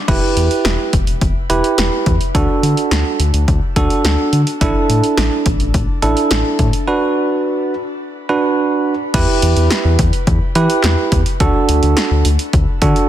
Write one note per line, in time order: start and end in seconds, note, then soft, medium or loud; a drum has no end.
0.08 0.20 E1 loud
0.08 0.94 E4 medium
0.08 0.94 G4 medium
0.08 0.94 B4 medium
0.08 kick loud
0.08 crash medium
0.37 0.49 E2 loud
0.37 closed hi-hat medium
0.51 closed hi-hat soft
0.65 0.77 E1 loud
0.65 snare loud
0.65 closed hi-hat medium
0.93 1.05 E1 medium
0.93 kick medium
0.93 closed hi-hat medium
1.07 1.19 E1 medium
1.07 closed hi-hat soft
1.21 1.34 E1 loud
1.21 kick medium
1.21 closed hi-hat medium
1.50 1.62 E1 medium
1.50 2.14 E4 medium
1.50 2.14 G4 medium
1.50 2.14 B4 medium
1.50 closed hi-hat medium
1.64 closed hi-hat medium
1.78 1.90 E1 loud
1.78 snare loud
1.78 closed hi-hat medium
2.06 2.18 E2 loud
2.06 kick medium
2.06 closed hi-hat medium
2.21 closed hi-hat soft
2.35 2.47 D2 loud
2.35 3.21 D4 medium
2.35 3.21 F#4 medium
2.35 3.21 A4 medium
2.35 kick loud
2.35 closed hi-hat medium
2.63 2.75 D3 loud
2.63 closed hi-hat medium
2.77 closed hi-hat medium
2.91 3.03 D2 loud
2.91 snare loud
2.91 closed hi-hat medium
3.19 3.32 D2 loud
3.19 closed hi-hat medium
3.34 3.46 D2 loud
3.34 closed hi-hat soft
3.48 3.60 D2 loud
3.48 kick medium
3.48 closed hi-hat medium
3.76 3.88 D2 loud
3.76 4.41 D4 medium
3.76 4.41 F#4 medium
3.76 4.41 A4 medium
3.76 kick medium
3.76 closed hi-hat medium
3.90 closed hi-hat medium
4.04 4.17 D2 loud
4.04 snare loud
4.04 closed hi-hat medium
4.33 4.45 D3 loud
4.33 closed hi-hat medium
4.47 closed hi-hat medium
4.61 4.73 A1 loud
4.61 5.47 D4 medium
4.61 5.47 E4 medium
4.61 5.47 A4 medium
4.61 kick loud
4.61 closed hi-hat medium
4.89 5.01 A2 loud
4.89 closed hi-hat medium
5.04 closed hi-hat soft
5.17 5.30 A1 loud
5.17 snare loud
5.17 closed hi-hat medium
5.46 5.58 A1 loud
5.46 kick medium
5.46 closed hi-hat medium
5.60 5.72 A1 medium
5.60 closed hi-hat soft
5.74 5.86 A1 loud
5.74 kick medium
5.74 closed hi-hat medium
6.02 6.15 A1 loud
6.02 6.67 D4 medium
6.02 6.67 E4 medium
6.02 6.67 A4 medium
6.02 closed hi-hat medium
6.17 closed hi-hat medium
6.31 6.43 A1 loud
6.31 snare loud
6.31 closed hi-hat medium
6.59 6.71 A2 loud
6.59 kick medium
6.59 closed hi-hat medium
6.73 closed hi-hat medium
6.87 7.73 D4 medium
6.87 7.73 F#4 medium
6.87 7.73 B4 medium
8.29 8.94 D4 medium
8.29 8.93 F#4 medium
8.29 8.93 B4 medium
9.14 9.26 E2 loud
9.14 10.00 E4 medium
9.14 10.00 G4 medium
9.14 10.00 B4 loud
9.14 kick loud
9.14 closed hi-hat medium
9.14 crash loud
9.42 9.54 E2 loud
9.42 closed hi-hat medium
9.56 9.69 E2 loud
9.56 closed hi-hat medium
9.71 snare loud
9.71 closed hi-hat medium
9.85 9.97 E2 loud
9.99 10.11 E2 loud
9.99 kick medium
9.99 closed hi-hat medium
10.13 closed hi-hat soft
10.27 10.39 E2 loud
10.27 kick loud
10.27 closed hi-hat medium
10.55 10.68 E3 loud
10.55 11.20 E4 medium
10.55 11.20 G4 medium
10.55 11.20 B4 medium
10.55 closed hi-hat medium
10.70 closed hi-hat medium
10.84 10.96 E2 loud
10.84 snare loud
10.84 clap loud
10.84 closed hi-hat medium
11.12 11.24 E2 loud
11.12 kick medium
11.12 closed hi-hat medium
11.26 closed hi-hat medium
11.40 11.52 D2 loud
11.40 12.26 D4 medium
11.40 12.26 F#4 medium
11.40 12.26 A4 loud
11.40 kick loud
11.40 closed hi-hat medium
11.69 11.81 D2 medium
11.69 closed hi-hat medium
11.83 11.95 D2 loud
11.83 closed hi-hat medium
11.97 snare loud
11.97 closed hi-hat medium
12.11 12.23 D2 loud
12.25 12.37 D2 loud
12.25 closed hi-hat medium
12.39 closed hi-hat soft
12.53 12.66 D2 loud
12.53 kick loud
12.53 closed hi-hat medium
12.82 12.94 D3 loud
12.82 13.09 D4 medium
12.82 13.09 F#4 medium
12.82 13.09 A4 medium
12.82 kick medium
12.82 closed hi-hat medium
12.96 closed hi-hat medium